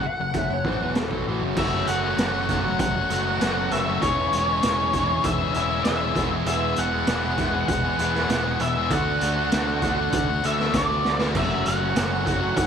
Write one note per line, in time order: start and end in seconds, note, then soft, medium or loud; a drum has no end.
0.00 0.34 F#4 medium
0.00 0.93 F#5 loud
0.04 0.34 F#3 soft
0.04 0.34 A3 soft
0.04 0.35 C#4 soft
0.04 0.35 F#5 loud
0.04 muted overdriven electric guitar stroke soft
0.04 muted fingered electric bass stroke soft
0.04 muted distorted electric guitar stroke medium
0.20 0.34 F#1 medium
0.20 0.34 F#2 medium
0.20 0.34 C#3 medium
0.34 0.49 F#1 medium
0.34 0.49 F#2 medium
0.34 0.50 C#3 medium
0.34 0.94 F#3 medium
0.34 0.94 A3 medium
0.34 0.96 C#4 loud
0.34 0.96 F#4 medium
0.34 0.51 E5 medium
0.34 kick medium
0.34 closed hi-hat medium
0.50 0.64 F#1 medium
0.50 0.66 F#2 medium
0.50 0.65 C#3 medium
0.50 0.67 C#5 medium
0.64 0.79 A1 medium
0.64 0.80 A2 medium
0.64 0.80 E3 medium
0.64 0.81 C5 medium
0.64 kick loud
0.80 1.09 E1 medium
0.80 1.11 E2 medium
0.80 1.11 B2 medium
0.80 1.11 E3 medium
0.84 0.98 B4 medium
0.95 1.57 F#3 soft
0.95 1.57 A3 medium
0.95 1.58 C#4 medium
0.95 1.58 F#4 medium
0.95 snare loud
0.95 closed hi-hat medium
1.00 1.28 A4 medium
1.11 1.25 B1 medium
1.11 1.26 B2 medium
1.11 1.27 F#3 medium
1.11 kick loud
1.27 1.41 A1 medium
1.27 1.42 A2 medium
1.27 1.42 E3 loud
1.27 1.58 F#4 medium
1.42 1.56 F#1 medium
1.42 1.55 F#2 medium
1.42 1.56 C#3 medium
1.56 1.85 F#1 medium
1.56 2.16 F#2 medium
1.56 2.17 C#3 medium
1.56 1.88 E3 medium
1.56 1.86 F#3 loud
1.56 1.87 A3 loud
1.56 1.88 C#4 loud
1.56 1.88 F#4 loud
1.56 1.88 E5 loud
1.56 kick medium
1.56 crash medium
1.87 2.16 F#1 medium
1.87 2.16 E3 soft
1.87 2.18 F#3 medium
1.87 2.18 A3 medium
1.87 2.19 C#4 medium
1.87 2.19 F#4 medium
1.87 2.79 F#5 loud
1.87 closed hi-hat medium
2.04 2.19 A3 medium
2.04 2.20 C#4 medium
2.04 2.20 F#4 medium
2.17 2.76 F#1 medium
2.17 2.64 F#2 loud
2.17 2.64 C#3 medium
2.17 2.49 E3 medium
2.17 2.33 F#3 loud
2.17 2.33 A3 loud
2.17 2.32 C#4 loud
2.17 2.31 F#4 loud
2.17 snare loud
2.17 closed hi-hat medium
2.32 2.47 F#3 medium
2.32 2.48 A3 medium
2.32 2.49 C#4 medium
2.32 2.49 F#4 medium
2.48 3.39 E3 soft
2.48 2.66 F#3 medium
2.48 2.64 A3 medium
2.48 2.64 C#4 medium
2.48 2.63 F#4 medium
2.48 kick medium
2.48 snare soft
2.48 closed hi-hat medium
2.64 2.96 F#3 medium
2.64 2.96 A3 medium
2.64 2.95 C#4 medium
2.64 2.94 F#4 medium
2.64 muted overdriven electric guitar stroke soft
2.79 3.08 F#1 medium
2.79 3.75 F#5 loud
2.79 kick loud
2.79 closed hi-hat loud
2.95 3.10 F#3 medium
2.95 3.10 A3 medium
2.95 3.11 C#4 medium
2.95 3.12 F#4 medium
2.95 muted overdriven electric guitar stroke medium
3.10 3.39 F#1 medium
3.10 3.41 F#3 medium
3.10 3.41 A3 medium
3.10 3.42 C#4 medium
3.10 3.42 F#4 medium
3.10 closed hi-hat medium
3.27 3.40 A3 medium
3.27 3.41 C#4 medium
3.27 3.42 F#4 medium
3.40 3.70 F#1 medium
3.40 3.87 F#2 medium
3.40 3.87 C#3 medium
3.40 3.71 E3 medium
3.40 3.57 F#3 loud
3.40 3.57 A3 loud
3.40 3.56 C#4 loud
3.40 3.55 F#4 loud
3.40 snare medium
3.40 closed hi-hat medium
3.57 3.71 F#3 medium
3.57 3.71 A3 medium
3.57 3.71 C#4 medium
3.57 3.72 F#4 medium
3.71 4.00 F#1 loud
3.71 4.01 E3 soft
3.71 4.01 F#3 medium
3.71 3.88 A3 medium
3.71 4.03 A3 soft
3.71 4.02 C#4 soft
3.71 3.88 C#4 medium
3.71 4.02 F#4 medium
3.71 3.86 F#4 medium
3.71 4.01 E5 loud
3.71 muted distorted electric guitar stroke medium
3.71 snare soft
3.71 closed hi-hat medium
3.87 4.02 F#3 medium
3.87 4.01 A3 medium
3.87 4.01 C#4 medium
3.87 4.01 F#4 medium
4.02 4.31 E1 medium
4.02 4.33 E3 loud
4.02 4.33 G#3 medium
4.02 4.33 C#4 loud
4.02 4.33 E4 medium
4.02 4.49 E4 loud
4.02 4.35 G#4 loud
4.02 5.25 C#5 loud
4.02 kick medium
4.02 closed hi-hat medium
4.33 4.62 E1 medium
4.33 4.63 E3 medium
4.33 4.63 G#3 medium
4.33 4.64 C#4 medium
4.33 4.65 E4 soft
4.33 4.65 G#4 medium
4.33 closed hi-hat medium
4.49 4.64 G#3 medium
4.49 4.64 C#4 medium
4.49 4.65 E4 medium
4.63 5.21 E1 medium
4.63 4.94 E3 loud
4.63 4.80 G#3 medium
4.63 4.79 C#4 loud
4.63 4.97 E4 medium
4.63 4.96 E4 medium
4.63 4.78 G#4 loud
4.63 snare loud
4.63 closed hi-hat loud
4.79 4.95 G#3 medium
4.79 4.95 C#4 medium
4.79 4.96 G#4 medium
4.93 5.53 E3 medium
4.93 5.10 G#3 medium
4.93 5.09 C#4 medium
4.93 5.87 E4 medium
4.93 5.08 G#4 medium
4.93 kick medium
4.93 closed hi-hat medium
4.97 5.11 E4 medium
5.09 5.40 G#3 medium
5.09 5.39 C#4 medium
5.09 5.38 G#4 medium
5.09 muted overdriven electric guitar stroke medium
5.24 5.53 E1 medium
5.24 5.53 E5 medium
5.24 kick loud
5.24 closed hi-hat loud
5.39 5.54 G#3 medium
5.39 5.55 C#4 medium
5.39 5.55 G#4 medium
5.39 muted overdriven electric guitar stroke medium
5.54 5.84 E1 medium
5.54 5.85 E3 medium
5.54 5.85 G#3 medium
5.54 5.86 C#4 medium
5.54 5.87 G#4 medium
5.54 5.83 E5 medium
5.54 closed hi-hat medium
5.58 5.70 E4 medium
5.71 5.86 G#3 medium
5.71 5.87 C#4 medium
5.71 5.89 E4 medium
5.84 6.14 E1 loud
5.84 6.16 E3 medium
5.84 6.02 G#3 medium
5.84 6.01 C#4 medium
5.84 6.18 E4 medium
5.84 6.00 G#4 medium
5.84 6.28 E5 loud
5.84 snare loud
5.84 closed hi-hat medium
5.89 6.18 E4 loud
6.01 6.16 G#3 medium
6.01 6.15 C#4 medium
6.01 6.15 G#4 medium
6.16 6.44 E1 loud
6.16 6.45 E2 medium
6.16 6.46 B2 loud
6.16 6.33 E3 loud
6.16 6.32 G#3 loud
6.16 6.31 B3 loud
6.16 6.32 E4 medium
6.16 6.47 E4 medium
6.16 6.30 G#4 loud
6.16 kick loud
6.16 snare soft
6.16 closed hi-hat medium
6.31 6.47 E3 medium
6.31 6.47 G#3 medium
6.31 6.47 B3 medium
6.31 6.49 E4 medium
6.31 6.48 G#4 medium
6.46 6.75 E1 loud
6.46 7.07 E2 loud
6.46 7.08 B2 loud
6.46 6.77 E3 medium
6.46 6.77 G#3 loud
6.46 6.78 B3 loud
6.46 6.78 E4 medium
6.46 6.92 E4 medium
6.46 6.79 G#4 loud
6.46 6.79 E5 loud
6.46 closed hi-hat medium
6.76 7.06 E1 loud
6.76 7.09 E3 medium
6.76 7.08 G#3 medium
6.76 7.09 B3 medium
6.76 7.09 E4 soft
6.76 7.09 G#4 medium
6.76 7.67 F#5 loud
6.76 closed hi-hat medium
6.92 7.07 G#3 medium
6.92 7.07 B3 medium
6.92 7.09 E4 medium
7.07 7.65 E1 loud
7.07 7.54 E2 loud
7.07 7.55 B2 loud
7.07 7.26 E3 loud
7.07 7.24 G#3 loud
7.07 7.24 B3 loud
7.07 7.40 E4 loud
7.07 7.40 E4 medium
7.07 7.23 G#4 medium
7.07 snare loud
7.07 closed hi-hat loud
7.24 7.39 E3 medium
7.24 7.39 G#3 medium
7.24 7.40 B3 medium
7.24 7.40 G#4 medium
7.38 7.56 E3 medium
7.38 7.54 G#3 medium
7.38 7.53 B3 medium
7.38 7.54 E4 medium
7.38 8.31 E4 soft
7.38 7.52 G#4 medium
7.38 kick medium
7.38 snare soft
7.38 closed hi-hat medium
7.53 7.85 E3 medium
7.53 7.84 G#3 medium
7.53 7.83 B3 medium
7.53 7.83 G#4 medium
7.53 muted overdriven electric guitar stroke soft
7.68 7.97 E1 medium
7.68 8.63 F#5 loud
7.68 kick loud
7.68 closed hi-hat medium
7.84 7.99 E3 medium
7.84 7.99 G#3 medium
7.84 7.99 B3 medium
7.84 8.00 G#4 medium
7.84 muted overdriven electric guitar stroke medium
7.99 8.28 E1 medium
7.99 8.31 E3 medium
7.99 8.30 G#3 medium
7.99 8.30 B3 medium
7.99 8.13 E4 medium
7.99 8.31 G#4 medium
7.99 closed hi-hat medium
8.13 8.29 G#3 medium
8.13 8.30 B3 medium
8.13 8.31 E4 medium
8.13 snare soft
8.30 8.58 E1 medium
8.30 8.76 E2 medium
8.30 8.76 B2 loud
8.30 8.46 E3 loud
8.30 8.45 G#3 loud
8.30 8.44 B3 loud
8.30 8.60 E4 loud
8.30 8.62 E4 medium
8.30 8.43 G#4 loud
8.30 snare medium
8.30 closed hi-hat medium
8.45 8.62 E3 medium
8.45 8.61 G#3 medium
8.45 8.61 B3 medium
8.45 8.62 G#4 medium
8.59 8.89 E1 medium
8.59 8.90 E3 medium
8.59 8.76 G#3 medium
8.59 8.76 B3 medium
8.59 8.75 E4 medium
8.59 8.92 G#4 medium
8.59 8.90 E5 loud
8.59 muted distorted electric guitar stroke medium
8.59 closed hi-hat medium
8.64 8.92 B3 soft
8.64 8.93 E4 soft
8.76 8.90 E3 medium
8.76 8.90 G#3 medium
8.76 8.90 B3 medium
8.76 8.91 E4 medium
8.76 8.90 G#4 medium
8.90 9.19 D2 medium
8.90 9.21 D3 medium
8.90 9.22 E3 medium
8.90 9.22 A3 medium
8.90 9.22 D4 loud
8.90 9.24 F#4 loud
8.90 10.13 F#5 loud
8.90 kick medium
8.90 closed hi-hat medium
9.21 9.50 D2 medium
9.21 9.50 D3 medium
9.21 9.52 A3 medium
9.21 9.52 D4 medium
9.21 9.53 F#4 medium
9.21 closed hi-hat medium
9.36 9.52 A3 medium
9.36 9.52 D4 medium
9.36 9.53 F#4 medium
9.51 10.10 D2 medium
9.51 9.80 D3 loud
9.51 9.83 E3 medium
9.51 9.69 A3 loud
9.51 9.66 D4 loud
9.51 9.66 F#4 loud
9.51 snare loud
9.51 closed hi-hat loud
9.66 9.82 A3 medium
9.66 9.82 D4 medium
9.66 9.84 F#4 medium
9.81 10.28 D3 medium
9.81 9.98 A3 medium
9.81 9.97 D4 medium
9.81 9.96 F#4 medium
9.81 kick medium
9.81 closed hi-hat medium
9.97 10.29 A3 medium
9.97 10.28 D4 medium
9.97 10.26 F#4 medium
9.97 muted overdriven electric guitar stroke soft
10.12 10.41 D2 medium
10.12 10.45 F#5 loud
10.12 kick loud
10.12 closed hi-hat loud
10.27 10.43 A3 medium
10.27 10.44 D4 medium
10.27 10.45 F#4 medium
10.27 muted overdriven electric guitar stroke soft
10.43 10.72 D2 medium
10.43 10.72 D3 medium
10.43 10.72 A3 medium
10.43 10.74 D4 medium
10.43 10.74 F#4 medium
10.43 10.76 E5 medium
10.43 closed hi-hat medium
10.59 10.75 A3 medium
10.59 10.75 D4 medium
10.59 10.76 F#4 medium
10.59 snare soft
10.73 11.02 D2 medium
10.73 11.04 D3 medium
10.73 11.05 E3 soft
10.73 10.90 A3 loud
10.73 10.89 D4 medium
10.73 10.88 F#4 loud
10.73 11.18 D5 medium
10.73 kick medium
10.73 snare loud
10.73 closed hi-hat medium
10.89 11.04 A3 medium
10.89 11.04 D4 medium
10.89 11.05 F#4 medium
11.04 11.34 D2 loud
11.04 11.33 D3 medium
11.04 11.21 A3 medium
11.04 11.35 A3 soft
11.04 11.36 D4 soft
11.04 11.20 D4 medium
11.04 11.35 F#4 medium
11.04 11.19 F#4 medium
11.04 muted distorted electric guitar stroke soft
11.04 snare medium
11.20 11.34 A3 medium
11.20 11.34 D4 medium
11.20 11.33 F#4 medium
11.20 snare medium
11.34 11.63 F#1 loud
11.34 11.94 F#2 loud
11.34 11.95 C#3 medium
11.34 11.66 E3 medium
11.34 11.64 F#3 loud
11.34 11.65 A3 loud
11.34 11.67 C#4 loud
11.34 11.67 F#4 loud
11.34 11.67 E5 loud
11.34 kick medium
11.34 crash medium
11.66 11.94 F#1 medium
11.66 11.95 E3 soft
11.66 11.95 F#3 medium
11.66 11.96 A3 medium
11.66 11.97 C#4 medium
11.66 11.96 F#4 medium
11.66 12.53 F#5 loud
11.66 closed hi-hat medium
11.80 11.95 A3 medium
11.80 11.97 C#4 medium
11.80 11.96 F#4 medium
11.95 12.53 F#1 medium
11.95 12.41 F#2 loud
11.95 12.41 C#3 loud
11.95 12.27 E3 medium
11.95 12.13 F#3 loud
11.95 12.13 A3 loud
11.95 12.11 C#4 loud
11.95 12.10 F#4 loud
11.95 snare loud
11.95 closed hi-hat loud
12.12 12.25 F#3 medium
12.12 12.26 A3 medium
12.12 12.26 C#4 medium
12.12 12.27 F#4 medium
12.26 12.42 F#3 medium
12.26 12.42 A3 medium
12.26 12.41 C#4 medium
12.26 12.40 F#4 medium
12.26 kick medium
12.26 closed hi-hat medium
12.30 12.67 E3 soft
12.41 12.67 F#3 medium
12.41 12.67 A3 medium
12.41 12.67 C#4 medium
12.41 12.67 F#4 medium
12.41 muted overdriven electric guitar stroke soft
12.57 12.67 F#1 medium
12.57 12.67 F#5 medium
12.57 kick loud
12.57 closed hi-hat loud